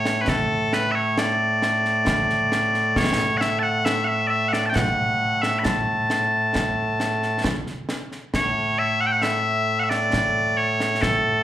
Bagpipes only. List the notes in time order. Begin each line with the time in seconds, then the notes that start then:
Already playing: A2 A3 C#5
0.21 B4
0.29 A4
0.73 B4
0.92 C#5 E5
1.18 D5
2.97 C#5
3.37 E5 F#5
3.59 F#5 A5
3.85 E5
4.04 E5 F#5
4.27 D5 E5
4.49 F#5
4.53 D5
4.66 G5 A5
4.75 F#5
5.42 E5
5.59 B5
5.64 A5
8.35 A2 A3 C#5
8.79 E5
9.01 F#5
9.06 G5
9.12 F#5
9.16 F#5
9.22 E5
9.80 F#5
9.84 E5
9.89 D5
10.57 C#5
11.02 A4